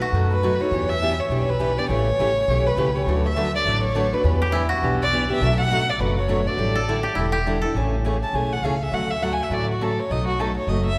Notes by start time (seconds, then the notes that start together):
Already playing: A4
0.02 F#4
0.12 F#2 B2 F#3 A3 D#4 F#4
0.31 B4
0.43 B2 F#3 A3 D#4 F#4
0.60 A3 D#4 F#4 C#5
0.71 E2 E3 B3 D4 G4
0.89 E5
1.02 E3 B3 D4 G4
1.19 C#5
1.29 B1 E3 B3 D4 G4
1.49 B4
1.59 E3 B3 D4 G4
1.77 B3 D4 G4 D5
1.89 A1 C#3 E3 A3 C#4 G4 C#5
2.18 A1 C#3 E3 A3 C#4 G4
2.47 B1 C#3 E3 A3 C#4 G4
2.66 B4
2.76 C#2 C#3 E3 A3 C#4 G4
2.94 A3 C#4 G4 C#5
3.06 D2 D3 F#3 A3 D4 F#4 B4
3.26 E5
3.36 D3 F#3 A3 D4 F#4 B4
3.55 D5
3.65 A1 D3 F#3 A3 D4 F#4 B4
3.84 C#5
3.95 D3 F#3 A3 D4 F#4 B4
4.13 A3 D4 F#4 B4
4.24 E2 E3 B3 D4 G4
4.42 G4
4.52 E3 B3 D4 E4 G4
4.69 F#4
4.82 B1 E3 B3 D4 G4
5.02 D5
5.13 E3 B3 D4 G4
5.30 B3 D4 G4 E5
5.41 B1 B2 F#3 A3 D4 F#4
5.60 F#5
5.70 B2 F#3 A3 D4 F#4
5.90 D5
5.99 F#1 B2 F#3 A3 D4 F#4 B4
6.18 C#5
6.28 B2 F#3 A3 D4 F#4
6.46 A3 D4 F#4 D5
6.57 A1 D3 G3 D4 E4 A4
6.75 A4
6.88 D3 G3 D4 E4 A4
7.03 G4
7.15 E1 D3 G3 D4 E4 A4
7.32 G4
7.46 D3 G3 D4 E4 A4
7.62 D4 E4 A4
7.74 A1 C#3 E3 A3 C#4 G#4
8.04 C#3 E3 A3 C#4 G#4
8.23 A5
8.33 B1 C#3 E3 A3 C#4 G#4 G#5
8.52 F#5
8.62 C#2 C#3 E3 A3 C#4 G#4 F5
8.83 E5
8.92 D2 D3 F#3 A3 C#4 F#4 F#5
9.10 E5
9.22 D3 F#3 A3 C#4 F#4 F#5
9.33 G#5
9.43 E5
9.50 A1 D3 F#3 A3 C#4 F#4 D5
9.71 F#4
9.81 D3 F#3 A3 C#4 F#4 A4
9.99 C#5
10.10 B1 B2 F#3 A3 D#4 F#4 D#5
10.27 F#4
10.39 B2 F#3 A3 D#4 F#4 A4
10.56 C#5
10.67 F#1 B2 F#3 A3 D#4 F#4 D#5
10.86 E5